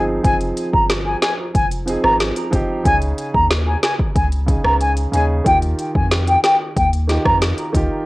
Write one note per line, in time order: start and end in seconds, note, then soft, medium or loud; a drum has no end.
0.00 0.20 G1 medium
0.00 0.23 F3 medium
0.00 0.24 C4 medium
0.00 0.25 D#4 medium
0.00 0.26 G#4 medium
0.23 0.52 F1 loud
0.23 1.33 F3 medium
0.23 1.34 C4 medium
0.23 1.35 D#4 medium
0.23 1.35 G#4 medium
0.23 0.35 G#5 loud
0.23 kick loud
0.23 closed hi-hat medium
0.41 closed hi-hat medium
0.57 closed hi-hat medium
0.73 1.15 G1 medium
0.73 0.84 A#5 medium
0.73 kick medium
0.90 snare loud
0.90 closed hi-hat medium
1.06 1.17 G#5 medium
1.22 1.33 G#5 medium
1.22 snare loud
1.22 closed hi-hat medium
1.55 1.96 F1 loud
1.55 1.66 G#5 medium
1.55 kick medium
1.55 closed hi-hat medium
1.71 closed hi-hat medium
1.86 2.42 F3 medium
1.86 2.42 C4 medium
1.86 2.43 D#4 medium
1.86 2.43 G#4 medium
1.86 closed hi-hat medium
2.04 2.32 G#1 medium
2.04 2.15 A#5 medium
2.04 cross-stick medium
2.20 snare loud
2.20 closed hi-hat medium
2.36 closed hi-hat medium
2.51 2.67 F1 medium
2.51 2.79 F3 medium
2.51 2.80 C4 medium
2.51 2.80 D#4 medium
2.51 2.81 G4 medium
2.51 kick medium
2.51 closed hi-hat medium
2.83 3.13 C#2 loud
2.83 3.94 C#3 medium
2.83 3.95 C#4 medium
2.83 3.95 D#4 medium
2.83 3.96 G#4 medium
2.83 2.96 G#5 loud
2.83 kick loud
2.83 closed hi-hat medium
3.02 closed hi-hat soft
3.18 closed hi-hat medium
3.34 3.76 D#2 medium
3.34 3.45 A#5 medium
3.34 kick medium
3.51 snare loud
3.51 closed hi-hat medium
3.67 3.78 G#5 medium
3.83 3.94 G#5 medium
3.83 snare loud
3.83 closed hi-hat medium
3.99 kick medium
4.16 4.57 C#2 loud
4.16 4.27 G#5 medium
4.16 kick medium
4.16 closed hi-hat medium
4.32 closed hi-hat medium
4.46 5.02 C#3 medium
4.46 5.03 C#4 medium
4.46 5.04 D#4 medium
4.46 5.04 G#4 medium
4.46 kick medium
4.46 closed hi-hat medium
4.65 5.06 C#2 medium
4.65 4.76 A#5 medium
4.65 cross-stick loud
4.81 4.92 G#5 medium
4.81 closed hi-hat medium
4.97 closed hi-hat medium
5.12 5.41 D#2 medium
5.12 5.40 C#3 medium
5.12 5.41 C#4 medium
5.12 5.41 D#4 medium
5.12 5.42 G#4 medium
5.12 5.24 G#5 medium
5.12 closed hi-hat medium
5.44 5.74 D#2 loud
5.44 6.55 D#3 medium
5.44 6.56 D#4 medium
5.44 6.56 F4 medium
5.44 6.57 G4 medium
5.44 5.57 G5 loud
5.44 kick loud
5.44 closed hi-hat medium
5.62 closed hi-hat soft
5.79 closed hi-hat medium
5.95 6.37 F2 medium
5.95 6.06 G#5 medium
5.95 kick medium
6.11 snare loud
6.11 closed hi-hat medium
6.27 6.39 G5 medium
6.27 closed hi-hat medium
6.44 6.55 G5 medium
6.44 snare loud
6.44 closed hi-hat medium
6.76 7.18 D#2 loud
6.76 6.88 G5 medium
6.76 kick loud
6.76 closed hi-hat medium
6.93 closed hi-hat medium
7.07 7.63 D#3 medium
7.07 7.64 D#4 medium
7.07 7.64 F4 medium
7.07 7.65 G4 medium
7.07 snare medium
7.07 closed hi-hat medium
7.25 7.53 F2 medium
7.25 7.36 A#5 medium
7.25 kick medium
7.25 cross-stick loud
7.42 snare loud
7.42 closed hi-hat medium
7.58 closed hi-hat soft
7.73 7.88 C#2 loud
7.73 8.01 D#3 medium
7.73 8.02 D#4 medium
7.73 8.02 F4 medium
7.73 8.03 G4 medium
7.73 kick medium
7.73 closed hi-hat medium